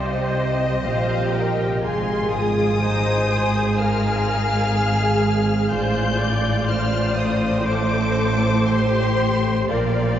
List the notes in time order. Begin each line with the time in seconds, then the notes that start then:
Already playing: C2 C3 G4 C5 D#5
0.86 A#1 A#2 G4 C5 F5
1.34 A#4 G5
1.83 G#1 G#2 F4 G#4 G#5 C6
2.33 D#6
2.82 D#4 C5 G#5
3.31 G#4
3.78 A#4 F5 F6
4.74 G#4
5.70 A1 A2 F4 C5 D5 G6
6.19 D5
6.69 C5 F6
7.17 D#6
7.66 A4 C5 D6
8.17 C5
8.69 G4 C6
9.68 A#1 A#2 F4 A#4 D5